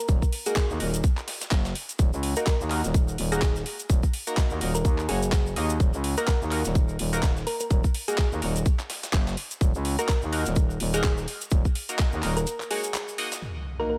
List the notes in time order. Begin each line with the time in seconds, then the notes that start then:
0.08 D#1, kick, closed hi-hat, shaker
0.22 kick, shaker
0.32 closed hi-hat, open hi-hat
0.46 A#3 D#4 F#4 G#4 A#4, closed hi-hat, shaker
0.56 G#4, kick, snare, clap, closed hi-hat, shaker
0.70 D#2, shaker
0.80 D#1 A#3 D#4 F#4 A#4, closed hi-hat, open hi-hat
0.94 closed hi-hat, shaker
1.04 kick, closed hi-hat, shaker
1.17 clap, shaker
1.28 snare, closed hi-hat, open hi-hat
1.41 snare, closed hi-hat, shaker
1.51 F#1, kick, snare, clap, closed hi-hat, shaker
1.65 snare, closed hi-hat, shaker
1.75 closed hi-hat, open hi-hat
1.89 closed hi-hat, shaker
1.99 D#1, kick, closed hi-hat, shaker
2.13 C#2, shaker
2.23 closed hi-hat, open hi-hat
2.36 A#3 D#4 F#4 A#4, closed hi-hat, shaker
2.47 A#4, kick, snare, clap, closed hi-hat, shaker
2.60 D#2, shaker
2.70 A#3 D#4 F#4 A#4, clap, closed hi-hat, open hi-hat
2.84 D#1, snare, closed hi-hat, shaker
2.94 kick, closed hi-hat, shaker
3.08 shaker
3.18 D#1, closed hi-hat, open hi-hat
3.32 A#3 D#4 F#4 G#4 A#4, closed hi-hat, shaker
3.42 kick, snare, clap, closed hi-hat, shaker
3.56 snare, shaker
3.66 closed hi-hat, open hi-hat
3.79 closed hi-hat, shaker
3.90 D#1, kick, closed hi-hat, shaker
4.03 kick, shaker
4.13 closed hi-hat, open hi-hat
4.27 A#3 D#4 F#4 A#4, closed hi-hat, shaker
4.37 kick, snare, clap, closed hi-hat, shaker
4.50 D#2, shaker
4.61 D#1 A#3 D#4 F#4 A#4, closed hi-hat, open hi-hat
4.75 A#4, closed hi-hat, shaker
4.85 D#2, kick, closed hi-hat, shaker
4.98 clap, shaker
5.09 F#1 A#3 D#4 F#4 G#4 C#5, closed hi-hat, open hi-hat
5.22 closed hi-hat, shaker
5.32 kick, snare, clap, closed hi-hat, shaker
5.46 shaker
5.56 D#2 A#3 D#4 F#4 D#5, closed hi-hat, open hi-hat
5.69 closed hi-hat, shaker
5.80 D#1, kick, closed hi-hat, shaker
5.94 C#2, shaker
6.04 closed hi-hat, open hi-hat
6.17 A#3 D#4 F#4 A#4, closed hi-hat, shaker
6.27 A#4, kick, snare, clap, closed hi-hat, shaker
6.41 D#2, shaker
6.51 A#3 D#4 F#4 A#4, clap, closed hi-hat, open hi-hat
6.65 D#1, snare, closed hi-hat, shaker
6.75 kick, closed hi-hat, shaker
6.89 shaker
6.99 D#1, closed hi-hat, open hi-hat
7.13 A#3 D#4 F#4 A#4, closed hi-hat, shaker
7.23 kick, snare, clap, closed hi-hat, shaker
7.37 snare, shaker
7.47 A#4, closed hi-hat, open hi-hat
7.60 A#4, closed hi-hat, shaker
7.71 D#1, kick, closed hi-hat, shaker
7.84 kick, shaker
7.94 closed hi-hat, open hi-hat
8.08 A#3 D#4 F#4 G#4 A#4, closed hi-hat, shaker
8.18 G#4, kick, snare, clap, closed hi-hat, shaker
8.32 D#2, shaker
8.42 D#1 A#3 D#4 F#4 A#4, closed hi-hat, open hi-hat
8.56 closed hi-hat, shaker
8.66 kick, closed hi-hat, shaker
8.79 clap, shaker
8.90 snare, closed hi-hat, open hi-hat
9.03 snare, closed hi-hat, shaker
9.13 F#1, kick, snare, clap, closed hi-hat, shaker
9.27 snare, closed hi-hat, shaker
9.37 closed hi-hat, open hi-hat
9.51 closed hi-hat, shaker
9.61 D#1, kick, closed hi-hat, shaker
9.74 C#2, shaker
9.85 closed hi-hat, open hi-hat
9.99 A#3 D#4 F#4 A#4, closed hi-hat, shaker
10.09 A#4, kick, snare, clap, closed hi-hat, shaker
10.22 D#2, shaker
10.32 A#3 D#4 F#4 A#4, closed hi-hat, open hi-hat
10.45 D#1, snare, closed hi-hat, shaker
10.56 kick, closed hi-hat, shaker
10.70 shaker
10.80 D#1, closed hi-hat, open hi-hat
10.94 A#3 D#4 F#4 G#4 A#4, closed hi-hat, shaker
11.04 kick, snare, clap, closed hi-hat, shaker
11.17 snare, shaker
11.28 closed hi-hat, open hi-hat
11.41 closed hi-hat, shaker
11.51 D#1, kick, closed hi-hat, shaker
11.65 kick, shaker
11.75 closed hi-hat, open hi-hat
11.89 A#3 D#4 F#4 A#4, closed hi-hat, shaker
11.99 kick, snare, clap, closed hi-hat, shaker
12.12 D#2, shaker
12.23 D#1 A#3 D#4 F#4 A#4, snare, clap, closed hi-hat, open hi-hat
12.37 A#4, closed hi-hat, shaker
12.47 closed hi-hat, shaker
12.60 clap, shaker
12.71 A#3 D#4 F#4 G#4 C#5, closed hi-hat, open hi-hat
12.84 closed hi-hat, shaker
12.94 clap, closed hi-hat, shaker
13.08 shaker
13.18 A#3 D#4 F#4 D#5, closed hi-hat, open hi-hat
13.32 snare, closed hi-hat, shaker
13.42 impact
13.80 A#3 D#4 F#4 A#4
13.90 A#4